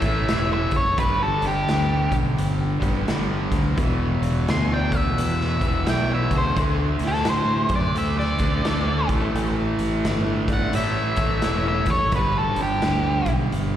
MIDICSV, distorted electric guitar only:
0, 0, Header, 1, 2, 480
1, 0, Start_track
1, 0, Tempo, 697674
1, 669, Time_signature, 4, 2, 24, 8
1, 9471, End_track
2, 0, Start_track
2, 0, Title_t, "Distorted electric guitar"
2, 0, Program_c, 0, 30
2, 23, Note_on_c, 0, 57, 75
2, 41, Note_on_c, 0, 52, 82
2, 52, Note_on_c, 0, 45, 64
2, 480, Note_off_c, 0, 57, 0
2, 489, Note_off_c, 0, 52, 0
2, 494, Note_off_c, 0, 45, 0
2, 671, Note_on_c, 0, 43, 65
2, 686, Note_on_c, 0, 50, 73
2, 698, Note_on_c, 0, 55, 83
2, 1913, Note_off_c, 0, 55, 0
2, 1918, Note_off_c, 0, 43, 0
2, 1922, Note_on_c, 0, 55, 89
2, 1926, Note_off_c, 0, 50, 0
2, 1937, Note_on_c, 0, 50, 70
2, 1946, Note_on_c, 0, 43, 76
2, 2096, Note_off_c, 0, 55, 0
2, 2102, Note_off_c, 0, 43, 0
2, 2104, Note_off_c, 0, 50, 0
2, 2110, Note_on_c, 0, 43, 73
2, 2122, Note_on_c, 0, 50, 83
2, 2137, Note_on_c, 0, 55, 84
2, 2583, Note_off_c, 0, 43, 0
2, 2588, Note_on_c, 0, 40, 74
2, 2589, Note_off_c, 0, 50, 0
2, 2596, Note_off_c, 0, 55, 0
2, 2604, Note_on_c, 0, 47, 85
2, 2616, Note_on_c, 0, 52, 81
2, 3838, Note_off_c, 0, 40, 0
2, 3846, Note_off_c, 0, 47, 0
2, 3851, Note_off_c, 0, 52, 0
2, 3859, Note_on_c, 0, 52, 83
2, 3875, Note_on_c, 0, 47, 73
2, 3884, Note_on_c, 0, 40, 61
2, 4026, Note_off_c, 0, 52, 0
2, 4030, Note_off_c, 0, 40, 0
2, 4034, Note_off_c, 0, 47, 0
2, 4038, Note_on_c, 0, 40, 82
2, 4055, Note_on_c, 0, 47, 81
2, 4069, Note_on_c, 0, 52, 82
2, 4502, Note_off_c, 0, 47, 0
2, 4504, Note_on_c, 0, 50, 71
2, 4507, Note_off_c, 0, 40, 0
2, 4517, Note_off_c, 0, 52, 0
2, 4520, Note_on_c, 0, 57, 81
2, 4534, Note_on_c, 0, 62, 86
2, 5754, Note_off_c, 0, 50, 0
2, 5762, Note_off_c, 0, 57, 0
2, 5768, Note_off_c, 0, 62, 0
2, 5776, Note_on_c, 0, 62, 83
2, 5790, Note_on_c, 0, 57, 73
2, 5799, Note_on_c, 0, 50, 69
2, 5939, Note_off_c, 0, 50, 0
2, 5944, Note_off_c, 0, 62, 0
2, 5948, Note_on_c, 0, 50, 75
2, 5951, Note_off_c, 0, 57, 0
2, 5961, Note_on_c, 0, 57, 74
2, 5978, Note_on_c, 0, 62, 86
2, 6235, Note_off_c, 0, 50, 0
2, 6242, Note_off_c, 0, 57, 0
2, 6250, Note_off_c, 0, 62, 0
2, 6251, Note_on_c, 0, 45, 79
2, 6261, Note_on_c, 0, 52, 89
2, 6273, Note_on_c, 0, 57, 101
2, 7362, Note_off_c, 0, 45, 0
2, 7370, Note_on_c, 0, 45, 61
2, 7377, Note_off_c, 0, 52, 0
2, 7386, Note_on_c, 0, 52, 82
2, 7390, Note_off_c, 0, 57, 0
2, 7399, Note_on_c, 0, 57, 78
2, 7665, Note_off_c, 0, 45, 0
2, 7673, Note_off_c, 0, 52, 0
2, 7679, Note_off_c, 0, 57, 0
2, 7686, Note_on_c, 0, 57, 81
2, 7706, Note_on_c, 0, 52, 84
2, 7716, Note_on_c, 0, 45, 69
2, 8151, Note_off_c, 0, 57, 0
2, 8160, Note_off_c, 0, 52, 0
2, 8165, Note_off_c, 0, 45, 0
2, 8342, Note_on_c, 0, 43, 67
2, 8358, Note_on_c, 0, 50, 78
2, 8371, Note_on_c, 0, 55, 70
2, 9471, Note_off_c, 0, 43, 0
2, 9471, Note_off_c, 0, 50, 0
2, 9471, Note_off_c, 0, 55, 0
2, 9471, End_track
0, 0, End_of_file